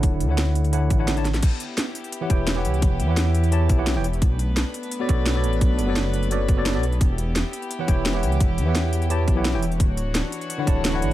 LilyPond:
<<
  \new Staff \with { instrumentName = "Tine electric piano" } { \time 4/4 \key e \dorian \tempo 4 = 172 <d d' e' cis'' fis''>8. <d d' e' cis'' fis''>4~ <d d' e' cis'' fis''>16 <d d' e' cis'' fis''>8. <d d' e' cis'' fis''>8 <d d' e' cis'' a''>16 r8 | r2 r16 <e e' g' cis'' fis''>16 <e e' g' cis'' g''>8. <e e' g' cis'' fis''>8.~ | <e e' g' cis'' fis''>8. <e e' g' cis'' fis''>4~ <e e' g' cis'' fis''>16 <e e' g' cis'' a''>8. <e e' g' cis'' fis''>8 <e e' g' cis'' g''>16 r8 | r2 r16 <b fis' a' cis'' d''>16 <b fis' a' cis'' d''>8. <b fis' a' cis'' d''>8.~ |
<b fis' a' cis'' d''>8. <b fis' a' cis'' d''>4~ <b fis' a' cis'' d''>16 <b fis' a' cis'' d''>8. <b fis' a' cis'' d''>8 <b fis' a' cis'' d''>16 r8 | r2 r16 <e e' g' cis'' fis''>16 <e e' g' cis'' g''>8. <e e' g' cis'' fis''>8.~ | <e e' g' cis'' fis''>8. <e e' g' cis'' fis''>4~ <e e' g' cis'' fis''>16 <e e' g' cis'' a''>8. <e e' g' cis'' fis''>8 <e e' g' cis'' g''>16 r8 | r2 r16 <d d' e' cis'' fis''>16 <d d' e' cis'' a''>8. <d d' e' cis'' fis''>8. | }
  \new Staff \with { instrumentName = "String section" } { \time 4/4 \key e \dorian << { r1 | <e' g'>1~ | <e' g'>1 | <a d' b'>1~ |
<a d' b'>1 | <e' g'>1~ | <e' g'>1 | <e d' fis'>1 | } \\ { r1 | b1~ | b1~ | b1~ |
b1~ | b1~ | b1 | cis''1 | } >> }
  \new Staff \with { instrumentName = "Detuned saw bass" } { \clef bass \time 4/4 \key e \dorian d,,8 d,2 a,,4. | r2 r8 e,,4 cis,8 | e,,8 e,2 b,,8. e,,8. | b,,4~ b,,16 r4 r16 b,,4 a,,8 |
b,,8 fis,,2 fis,,8. b,,8. | e,,4~ e,,16 r4 r16 e,,4 cis,8 | e,,8 e,2 b,,8. e,,8. | d,,4~ d,,16 r4 r16 d,,4 a,,8 | }
  \new DrumStaff \with { instrumentName = "Drums" } \drummode { \time 4/4 <hh bd>8 hh8 <hh sn>8 hh16 hh16 hh8 <hh bd>8 <hh sn>16 hh16 <hh sn>16 <hh sn>16 | <cymc hh bd>8 hh8 <hh sn>8 hh16 hh16 hh8 <hh bd>8 <hh sn>8 hh16 hh16 | <hh bd>8 hh8 <hh sn>8 hh16 hh16 hh8 <hh bd>8 <hh sn>8 hh16 hh16 | <hh bd>8 hh8 <hh sn>8 hh16 hh16 hh8 <hh bd>8 <hh sn>8 hh16 hh16 |
<hh bd>8 hh8 <hh sn>8 hh16 hh16 hh8 <hh bd>8 <hh sn>8 hh16 hh16 | <hh bd>8 hh8 <hh sn>8 hh16 hh16 hh8 <hh bd>8 <hh sn>8 hh16 hh16 | <hh bd>8 hh8 <hh sn>8 hh16 hh16 hh8 <hh bd>8 <hh sn>8 hh16 hh16 | <hh bd>8 hh8 <hh sn>8 hh16 hh16 hh8 <hh bd>8 <hh sn>8 hh8 | }
>>